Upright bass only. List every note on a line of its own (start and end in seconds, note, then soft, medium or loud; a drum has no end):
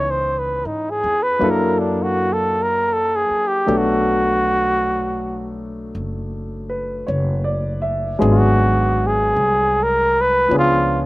0.00 0.61 C#2 medium
0.65 1.00 G#2 medium
1.04 1.39 E2 medium
1.41 3.26 F#2 medium
3.30 muted upright bass stroke soft
3.68 5.90 B1 medium
5.95 7.03 F#1 medium
7.08 8.17 F#1 medium
8.22 9.32 G#1 loud
9.36 10.47 C2 medium
10.51 11.06 C#2 medium